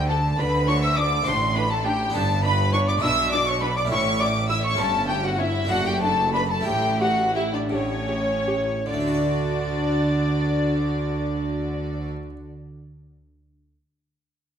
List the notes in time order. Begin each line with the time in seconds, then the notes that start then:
Already playing: D2 D3 A3 D4 A4
0.08 D4 A4 A5
0.37 D2 D3 D4 B4 B5
0.67 D4 C#5 C#6
0.81 E5 E6
0.96 D4 D5 D6 D#6
1.00 D6
1.22 A3 D4 F#4 C5 C6
1.27 A1 A2
1.55 D4 B4 B5
1.70 A4 A5
1.85 D4 G4 G5
2.10 B3 D4 G4 A4 A5
2.14 G1 G2 D4 A5
2.42 D4 B4 B5
2.72 D4 C#5 C#6
2.87 D5 D6
2.98 G#3 D4 E4
3.02 B1 B2 D4 E5 E6
3.31 D4 D5 D6
3.45 C#5 C#6
3.61 D4 B4 B5
3.76 D5 D6
3.85 A3 C#4 E4
3.89 A1 A2 E4 C#5 C#6
4.19 E4 D5 D6
4.49 E4 E5 E6
4.63 C#5 C#6
4.74 A3 C#4 E4
4.78 G1 G2 C#4 A4 A5
5.08 C#4 G4 G5
5.24 F#4 F#5
5.38 C#4 E4 E5
5.65 A3 D4 F#4
5.69 F#1 F#2 D4 F#4 F#5
5.85 G4 G5
6.01 D4 A4 A5
6.33 D4 B4 B5
6.50 A4 A5
6.61 A3 E4 G4
6.65 A1 A2 G4 G5
6.99 F#4 G4 F#5
7.34 E4 G4 E5
7.52 D4 D5
7.70 A1 A2 C#4 G4 C#5 D5
7.75 C#5
8.09 G4
8.47 G4
8.86 D2 D3 D4 F#4 D5
8.94 A3
9.01 D4
9.08 F#4
9.14 D5